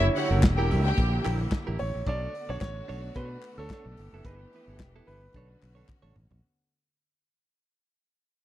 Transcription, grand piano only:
0, 0, Header, 1, 2, 480
1, 0, Start_track
1, 0, Key_signature, 2, "minor"
1, 0, Tempo, 545306
1, 1819, Time_signature, 4, 2, 24, 8
1, 7430, End_track
2, 0, Start_track
2, 0, Title_t, "Grand piano"
2, 0, Program_c, 0, 0
2, 0, Note_on_c, 0, 73, 78
2, 347, Note_off_c, 0, 73, 0
2, 1579, Note_on_c, 0, 73, 91
2, 1826, Note_off_c, 0, 73, 0
2, 1827, Note_on_c, 0, 74, 108
2, 2201, Note_off_c, 0, 74, 0
2, 2201, Note_on_c, 0, 73, 100
2, 2245, Note_off_c, 0, 73, 0
2, 2298, Note_on_c, 0, 73, 107
2, 2778, Note_on_c, 0, 71, 99
2, 2793, Note_off_c, 0, 73, 0
2, 3120, Note_off_c, 0, 71, 0
2, 3150, Note_on_c, 0, 69, 101
2, 3744, Note_on_c, 0, 71, 86
2, 3759, Note_off_c, 0, 69, 0
2, 4426, Note_off_c, 0, 71, 0
2, 4463, Note_on_c, 0, 71, 85
2, 5146, Note_off_c, 0, 71, 0
2, 7430, End_track
0, 0, End_of_file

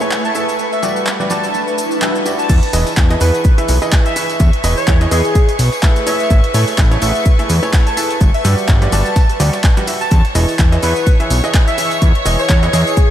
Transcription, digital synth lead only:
0, 0, Header, 1, 2, 480
1, 0, Start_track
1, 0, Key_signature, 4, "major"
1, 0, Tempo, 476190
1, 595, Time_signature, 4, 2, 24, 8
1, 13209, End_track
2, 0, Start_track
2, 0, Title_t, "Digital synth lead"
2, 0, Program_c, 0, 84
2, 249, Note_on_c, 0, 81, 87
2, 317, Note_off_c, 0, 81, 0
2, 354, Note_on_c, 0, 81, 73
2, 441, Note_off_c, 0, 81, 0
2, 729, Note_on_c, 0, 76, 89
2, 868, Note_off_c, 0, 76, 0
2, 1313, Note_on_c, 0, 81, 93
2, 1689, Note_off_c, 0, 81, 0
2, 2409, Note_on_c, 0, 81, 90
2, 2515, Note_off_c, 0, 81, 0
2, 3235, Note_on_c, 0, 71, 95
2, 3395, Note_off_c, 0, 71, 0
2, 4088, Note_on_c, 0, 76, 88
2, 4156, Note_off_c, 0, 76, 0
2, 4197, Note_on_c, 0, 76, 80
2, 4282, Note_off_c, 0, 76, 0
2, 4808, Note_on_c, 0, 73, 91
2, 4947, Note_off_c, 0, 73, 0
2, 5155, Note_on_c, 0, 68, 99
2, 5529, Note_off_c, 0, 68, 0
2, 6114, Note_on_c, 0, 76, 99
2, 6489, Note_off_c, 0, 76, 0
2, 7074, Note_on_c, 0, 76, 94
2, 7235, Note_off_c, 0, 76, 0
2, 7930, Note_on_c, 0, 81, 91
2, 7997, Note_off_c, 0, 81, 0
2, 8035, Note_on_c, 0, 81, 80
2, 8121, Note_off_c, 0, 81, 0
2, 8410, Note_on_c, 0, 76, 93
2, 8548, Note_off_c, 0, 76, 0
2, 8994, Note_on_c, 0, 81, 97
2, 9369, Note_off_c, 0, 81, 0
2, 10087, Note_on_c, 0, 81, 96
2, 10247, Note_off_c, 0, 81, 0
2, 10915, Note_on_c, 0, 71, 94
2, 11076, Note_off_c, 0, 71, 0
2, 11769, Note_on_c, 0, 76, 90
2, 11837, Note_off_c, 0, 76, 0
2, 11873, Note_on_c, 0, 76, 81
2, 11960, Note_off_c, 0, 76, 0
2, 12488, Note_on_c, 0, 73, 96
2, 12627, Note_off_c, 0, 73, 0
2, 12834, Note_on_c, 0, 68, 100
2, 13209, Note_off_c, 0, 68, 0
2, 13209, End_track
0, 0, End_of_file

